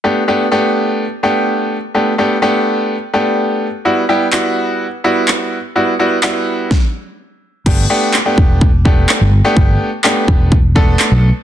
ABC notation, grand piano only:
X:1
M:4/4
L:1/16
Q:1/4=126
K:G
V:1 name="Grand piano"
[A,B,DG] z [A,B,DG] z [A,B,DG]4 z2 [A,B,DG]4 z2 | [A,B,DG] z [A,B,DG] z [A,B,DG]4 z2 [A,B,DG]4 z2 | [G,B,EF] z [G,B,EG] z [G,B,EF]4 z2 [G,B,EF]4 z2 | [G,B,EF] z [G,B,EF] z [G,B,EF]4 z8 |
[A,B,DG] z [A,B,DG]2 z [A,B,DG]4 z [A,B,DG]4 z [A,B,DG]- | [A,B,DG]3 z [A,B,DG]4 z2 [A,B,DA]4 z2 |]